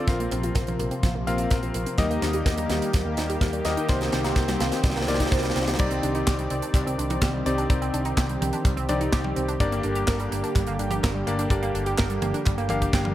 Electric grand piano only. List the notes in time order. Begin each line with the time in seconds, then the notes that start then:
0.08 C4 F4 A#4 F5
1.27 C4 F4 A#4 F5
1.98 A#3 D#4 G4 D#5
3.65 A#3 D#4 G4 D#5
3.89 A#3 D#4 G4 C5
5.08 A#3 D#4 G4 D5
5.79 C4 D#4 G4 D5
7.46 C4 D#4 G4 D5
7.70 C4 D#4 G4 D5
8.89 C4 D#4 G4 D5
9.60 A#3 D4 G4 D5
11.27 A#3 D4 G4 D5
11.51 A#3 D4 G4 D5
12.70 A#3 D4 G4 F5